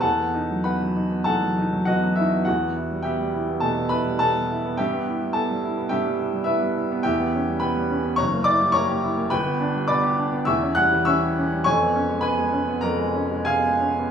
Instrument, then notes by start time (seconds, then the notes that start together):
grand piano
0.01 E2 A4 F#5 A5
0.19 B3
0.34 D#4
0.50 F#3
0.64 B3 B4 F#5 B5
0.82 F#3
0.97 D#4
1.12 B3
1.24 E2 A4 F#5 A5
1.43 F#3
1.58 D#4
1.73 F#3
1.85 B3 F#4 D#5 F#5
2.03 F#3
2.16 D#4 E4 E5
2.33 B3
2.45 E2 F#4 F#5
2.62 B3
2.76 E4
2.91 G3
3.03 B3 G4 E5 G5
3.20 G3
3.34 E4
3.48 B3
3.60 B2 A4 A5
3.77 B3
3.89 E4 B4 B5
4.07 G3
4.19 B3 A4 A5
4.37 G3
4.50 E4
4.65 B3
4.77 G2 G4 E5 G5
4.94 B3
5.07 E4
5.21 G3
5.33 B3 A4 A5
5.50 G3
5.64 E4
5.78 B3
5.89 G2 G4 E5 G5
6.04 G3
6.19 E4
6.33 G3
6.44 B3 E4 B4 E5
6.62 G3
6.77 E4
6.92 B3
7.03 E2 G4 E5 G5
7.20 B3
7.35 C#4
7.48 G3
7.60 B3 B4 G5 B5
7.76 G3
7.91 C#4
8.04 B3
8.16 F#1 C#5 A#5 C#6
8.32 A#3
8.44 E4 D5 D6
8.61 G3
8.72 A#3 C#5 A#5 C#6
8.88 G4
9.03 E4
9.17 A#3
9.30 G1 B4 G5 B5
9.46 B3
9.60 D4
9.75 G3
9.88 B3 D5 B5 D6
10.03 G4
10.18 D4
10.33 B3
10.45 E2 E5 C#6 E6
10.63 C#4
10.75 G3 F#5 F#6
10.92 E3
11.05 C#4 E5 C#6 E6
11.22 G4
11.38 C#4
11.53 G3
11.64 F2 C#5 G#5 C#6
11.81 B3
11.96 C#4
12.09 G#3
12.21 B3 B4 G#5 B5
12.38 G#3
12.53 C#4
12.68 B3
12.81 F2 A#4 A#5
12.99 G#3
13.14 C#4
13.31 G#3
13.45 B3 G#4 F5 G#5
13.63 G#3
13.81 C#4
13.99 B3